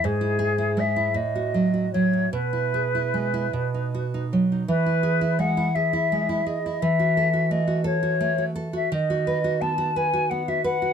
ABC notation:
X:1
M:6/8
L:1/16
Q:3/8=56
K:E
V:1 name="Flute"
G4 e2 d4 c2 | B8- B2 z2 | B4 f2 e4 d2 | e4 d2 c4- c e |
d4 a2 g2 f e f2 |]
V:2 name="Nylon-string guitar"
G,, E G E G, E A,, F F, F F, F | B,, E G E G, E B,, D F D F, D | E, E G E G, E G E G, E G E | E, F A F A, F A F A, F A F |
D, F B F B, F B F B, F B F |]